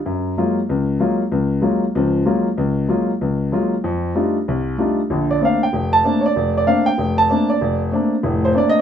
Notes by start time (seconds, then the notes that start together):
0.06 F#2
0.38 F#3 G#3 A#3 F4
0.69 C#2
1.00 F#3 G#3 A#3 F4
1.32 C#2
1.62 F#3 G#3 A#3 F4
1.95 C#2 F3
2.25 F#3 G#3 A#3 F4
2.58 C#2
2.88 F#3 G#3 A#3 F4
3.21 C#2
3.52 F#3 G#3 A#3 F4
3.84 F2
4.15 G3 A3 D4 D#4 F4
4.48 C2
4.78 G3 A3 D4 D#4 F4
5.10 A#1 D3
5.31 D5
5.41 A3 A#3 C4 D4 F5
5.63 G5
5.73 F1
5.93 A5
6.04 A3 A#3 C4 D4
6.21 C#5
6.26 D5
6.36 F1
6.58 D5
6.67 A3 A#3 C4 D4 F5
6.86 G5
6.98 F1
7.18 A5
7.30 A3 A#3 C4 D4
7.50 D5
7.61 F1
7.92 A3 A#3 C4 D4
8.23 F1 A2
8.45 C5
8.54 A3 A#3 C4 D4 D5
8.69 D#5